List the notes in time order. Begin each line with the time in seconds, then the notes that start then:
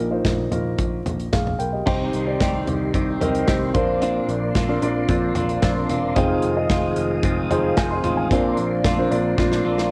Already playing: A#1 A#2 A#3 D#4 F4 A#4
0.11 A#3 D#4 F4 C5
0.25 A#1, kick, snare, closed hi-hat
0.51 A#1 A#3 D#4 F4 A#4, closed hi-hat, floor tom
0.78 A#1, kick, closed hi-hat
1.06 A#1, closed hi-hat, floor tom
1.19 closed hi-hat
1.32 A#1 G#4 F5, kick, snare, closed hi-hat
1.47 floor tom
1.59 B1 A#4 G5, closed hi-hat
1.73 G4 D#5
1.86 C2 C3 D#3 C4 D#4 G4 C5 C6, kick, crash
2.13 C2, closed hi-hat
2.27 C4 D#4 G4 D5
2.40 C2 D#3 C4 D#4 G4, kick, snare, closed hi-hat
2.67 C2, closed hi-hat, floor tom
2.93 C2 D#3 C4 D#4 G4, kick, closed hi-hat
3.20 C2 C4 D#4 G4 A#4, closed hi-hat, floor tom
3.35 closed hi-hat
3.48 C2 D#3 C4 D#4 G4, kick, snare, closed hi-hat
3.74 A#1 A#2 C4 D4 F4 A#4 C5 D5 C6, kick, closed hi-hat, floor tom
4.02 A#2 F3 C4 D4 F4, closed hi-hat
4.29 A#1, closed hi-hat
4.55 A#1 F3 C4 D4 F4, kick, snare, closed hi-hat
4.68 D4 F4 A#4 D5
4.82 A#1 D4 F4 A#4 D5, closed hi-hat
5.09 A#1 F3 C4 D4 F4, kick, closed hi-hat
5.35 A#1 C4 D4 F4, closed hi-hat, floor tom
5.49 closed hi-hat
5.62 A#1 F3 C4 D4 F4, kick, snare, closed hi-hat
5.89 E1 C4 D4 F4, closed hi-hat, floor tom
6.15 F1 F2 C3 D#3 G#3 C4 D#4 F4 G#4 C5 F5 D#6, kick, closed hi-hat
6.42 F1, closed hi-hat
6.57 D#4 F4 G#4 D#5
6.69 F1 D#3 G#3 C4 F4, kick, snare, closed hi-hat
6.96 F1, closed hi-hat
7.23 F1 D#3 G#3 C4 F4, kick, closed hi-hat
7.50 F1 D#3 G#3 C4 D#4 F4 G#4 C5, closed hi-hat, floor tom
7.77 F1 D#3 G#3 C4 F4 C5 G#5, kick, snare, closed hi-hat
7.91 D#5 C6
8.03 A1 D#3 G#3 C4 F4, closed hi-hat, floor tom
8.17 C5 G#5
8.30 A#1 A#2 F3 C4 D4 F4 A#4 C5 D5 C6, kick, closed hi-hat
8.57 A#1, closed hi-hat
8.84 A#1 F3 C4 D4 F4, kick, snare, closed hi-hat
8.98 D4 F4 A#4 C5
9.11 A#1 D4 F4 A#4 D5, closed hi-hat
9.38 A#1 F3 C4 D4 F4, kick, snare
9.52 snare
9.65 A#1 C4 D4 F4
9.78 snare